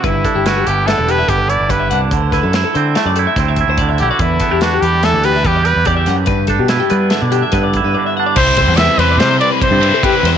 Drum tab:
CC |----------|----------|----------|----------|
RD |----------|----------|----------|----------|
HH |xxxxxxxxxx|xxxxxxxxxx|xxxxxxxxxx|xxxxxxxx--|
SD |--o-o-----|-oo-o-o---|--o-o----o|-oo-o-o---|
BD |oo----o-o-|oo----ooo-|oo----o-o-|oo----oo--|

CC |x---------|
RD |-xxxxxxxxx|
HH |----------|
SD |-oooo----o|
BD |oo----o-o-|